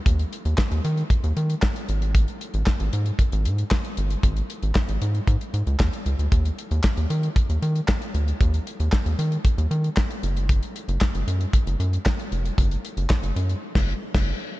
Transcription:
0.06 0.24 D#2 loud
0.06 kick loud
0.06 closed hi-hat loud
0.19 closed hi-hat soft
0.33 closed hi-hat medium
0.45 0.54 D#2 loud
0.45 closed hi-hat medium
0.57 kick loud
0.57 snare loud
0.57 clap medium
0.71 0.81 D#2 loud
0.71 closed hi-hat medium
0.84 1.03 D#3 loud
0.84 closed hi-hat medium
0.97 closed hi-hat soft
1.10 kick loud
1.10 closed hi-hat medium
1.24 1.33 D#2 loud
1.24 closed hi-hat medium
1.37 1.55 D#3 medium
1.37 closed hi-hat medium
1.50 closed hi-hat medium
1.62 kick loud
1.62 snare loud
1.62 clap medium
1.76 closed hi-hat soft
1.89 2.26 G#1 loud
1.89 closed hi-hat medium
2.02 closed hi-hat medium
2.15 kick loud
2.15 closed hi-hat loud
2.28 closed hi-hat soft
2.41 closed hi-hat medium
2.54 2.63 G#1 loud
2.54 closed hi-hat medium
2.66 kick loud
2.66 snare loud
2.66 clap medium
2.80 2.89 G#1 loud
2.80 closed hi-hat medium
2.93 3.11 G#2 loud
2.93 closed hi-hat medium
3.06 closed hi-hat soft
3.19 kick loud
3.19 closed hi-hat medium
3.32 3.47 G#1 loud
3.32 closed hi-hat medium
3.45 3.64 G#2 loud
3.45 closed hi-hat medium
3.58 closed hi-hat soft
3.71 kick loud
3.71 snare loud
3.71 clap medium
3.84 closed hi-hat medium
3.97 4.16 G1 loud
3.97 closed hi-hat medium
4.10 closed hi-hat medium
4.23 4.42 G#1 loud
4.23 kick loud
4.23 closed hi-hat medium
4.36 closed hi-hat soft
4.50 closed hi-hat medium
4.63 4.72 G#1 medium
4.63 closed hi-hat medium
4.75 kick loud
4.75 snare loud
4.75 clap medium
4.89 4.98 G#1 medium
4.89 closed hi-hat medium
5.02 5.20 G#2 loud
5.02 closed hi-hat medium
5.15 closed hi-hat soft
5.27 5.37 G#2 loud
5.27 kick loud
5.27 closed hi-hat medium
5.41 closed hi-hat medium
5.54 5.63 G#2 medium
5.54 closed hi-hat medium
5.67 5.76 C#2 loud
5.67 closed hi-hat medium
5.79 5.89 D#2 loud
5.79 kick loud
5.79 snare loud
5.79 clap medium
5.93 closed hi-hat medium
6.06 6.15 C#2 medium
6.06 closed hi-hat medium
6.19 6.28 D2 medium
6.19 closed hi-hat medium
6.32 6.50 D#2 loud
6.32 kick loud
6.32 closed hi-hat loud
6.45 closed hi-hat medium
6.59 closed hi-hat medium
6.71 6.80 D#2 loud
6.71 closed hi-hat medium
6.83 kick loud
6.83 snare loud
6.83 clap medium
6.97 7.06 D#2 medium
6.97 closed hi-hat medium
7.10 7.29 D#3 loud
7.10 closed hi-hat medium
7.23 closed hi-hat soft
7.36 kick loud
7.36 closed hi-hat medium
7.49 7.59 D#2 medium
7.49 closed hi-hat medium
7.62 7.81 D#3 loud
7.62 closed hi-hat medium
7.76 closed hi-hat medium
7.88 kick loud
7.88 snare loud
7.88 clap medium
8.02 closed hi-hat soft
8.14 8.33 D2 medium
8.14 closed hi-hat medium
8.28 closed hi-hat medium
8.41 8.59 D#2 loud
8.41 kick loud
8.41 closed hi-hat loud
8.54 closed hi-hat medium
8.67 closed hi-hat medium
8.80 8.89 D#2 loud
8.80 closed hi-hat medium
8.92 kick loud
8.92 snare loud
8.92 clap medium
9.06 9.15 D#2 medium
9.06 closed hi-hat soft
9.19 9.37 D#3 medium
9.19 closed hi-hat medium
9.32 closed hi-hat soft
9.45 kick loud
9.45 closed hi-hat medium
9.58 9.67 D#2 loud
9.58 closed hi-hat medium
9.71 9.89 D#3 loud
9.71 closed hi-hat medium
9.84 closed hi-hat soft
9.96 kick loud
9.96 snare loud
9.96 clap medium
10.11 closed hi-hat soft
10.23 10.60 F#1 loud
10.23 closed hi-hat medium
10.37 closed hi-hat medium
10.49 kick loud
10.49 closed hi-hat medium
10.63 closed hi-hat soft
10.76 closed hi-hat medium
10.88 10.98 F#1 loud
10.88 closed hi-hat medium
11.01 kick loud
11.01 snare loud
11.01 clap medium
11.14 11.24 F#1 loud
11.14 closed hi-hat medium
11.27 11.46 F#2 loud
11.27 closed hi-hat medium
11.41 closed hi-hat soft
11.53 kick loud
11.53 closed hi-hat medium
11.66 11.76 F#1 loud
11.66 closed hi-hat medium
11.79 11.98 F#2 medium
11.79 closed hi-hat medium
11.93 closed hi-hat medium
12.05 kick loud
12.05 snare loud
12.05 clap medium
12.19 closed hi-hat medium
12.32 12.50 F1 medium
12.32 closed hi-hat medium
12.45 closed hi-hat medium
12.58 12.76 F#1 loud
12.58 kick loud
12.58 closed hi-hat loud
12.71 closed hi-hat medium
12.85 closed hi-hat medium
12.97 13.06 F#1 loud
12.97 closed hi-hat medium
13.09 kick loud
13.09 snare loud
13.09 clap medium
13.23 13.32 F#1 medium
13.23 closed hi-hat medium
13.36 13.55 F#2 medium
13.36 closed hi-hat medium
13.49 closed hi-hat soft
13.75 13.93 F#1 loud
13.75 kick loud
13.75 snare loud
13.75 crash medium
14.15 14.32 F#1 loud
14.15 kick loud
14.15 snare loud
14.15 crash medium

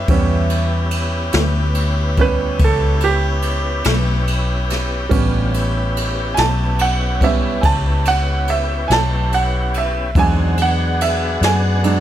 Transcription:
0.00 10.11 G4 medium
0.00 10.11 B4 medium
0.00 10.11 C#5 medium
0.00 2.15 E5 medium
0.05 1.31 E2 medium
0.05 1.31 G3 soft
0.05 5.07 B3 medium
0.05 5.07 C#4 medium
0.05 5.06 E4 medium
0.05 5.06 G4 medium
0.05 kick loud
0.05 ride medium
0.10 1.31 B3 soft
0.10 1.31 C#4 medium
0.50 ride medium
0.91 ride medium
1.33 2.56 D2 medium
1.33 snare loud
1.33 ride medium
1.75 ride medium
2.17 2.56 G3 soft
2.17 2.57 B3 soft
2.17 2.57 C#4 soft
2.17 kick medium
2.17 ride medium
2.21 2.60 B4 medium
2.59 3.82 C#2 medium
2.59 kick loud
2.59 ride medium
2.64 3.03 A4 medium
3.00 5.51 G4 medium
3.00 ride medium
3.42 ride medium
3.84 5.08 B1 medium
3.84 snare loud
3.84 ride medium
4.27 ride medium
4.70 snare soft
4.70 ride medium
5.09 6.34 A1 medium
5.09 5.53 D3 medium
5.09 7.21 G3 medium
5.09 7.21 B3 soft
5.09 5.51 B3 medium
5.09 7.21 C#4 medium
5.09 5.54 F4 medium
5.09 5.50 G4 medium
5.09 kick loud
5.09 ride medium
5.52 10.11 B3 medium
5.52 10.11 C#4 medium
5.52 10.11 E4 medium
5.52 10.11 G4 medium
5.52 ride medium
5.97 ride medium
6.34 7.60 B1 loud
6.34 6.39 G#5 medium
6.34 snare loud
6.34 ride medium
6.39 6.79 A5 medium
6.79 7.21 F#5 medium
6.79 ride medium
7.21 7.60 G3 soft
7.21 7.60 B3 soft
7.21 7.60 C#4 medium
7.21 7.64 E5 medium
7.21 kick medium
7.21 ride medium
7.61 8.86 C#2 medium
7.61 7.66 G#5 medium
7.61 8.05 A5 medium
7.61 kick loud
7.61 ride medium
8.05 8.48 F#5 loud
8.05 ride medium
8.48 8.90 E5 medium
8.48 ride medium
8.88 10.12 B1 medium
8.88 8.92 G#5 medium
8.88 snare loud
8.88 ride medium
8.92 9.32 A5 loud
9.32 9.74 F#5 medium
9.32 ride medium
9.74 10.17 E5 medium
9.74 ride medium
10.15 11.38 E2 medium
10.15 10.59 D#3 medium
10.15 11.82 F#3 soft
10.15 11.83 G#3 soft
10.15 10.59 C4 medium
10.15 11.83 D4 medium
10.15 10.58 F#4 medium
10.15 10.58 G#4 medium
10.15 12.00 G#4 medium
10.15 12.00 D5 medium
10.15 12.00 F#5 medium
10.15 10.58 G#5 medium
10.15 kick loud
10.15 ride medium
10.57 12.00 B3 medium
10.57 12.00 G#4 medium
10.57 ride medium
10.62 12.00 D4 medium
10.62 12.00 F#4 medium
10.62 11.01 F#5 medium
11.01 11.42 E5 medium
11.01 ride medium
11.41 12.00 F#2 loud
11.41 12.00 G#5 medium
11.41 snare loud
11.41 ride medium
11.83 12.00 F#3 soft
11.83 12.00 G#3 soft
11.83 12.00 D4 soft
11.83 ride medium

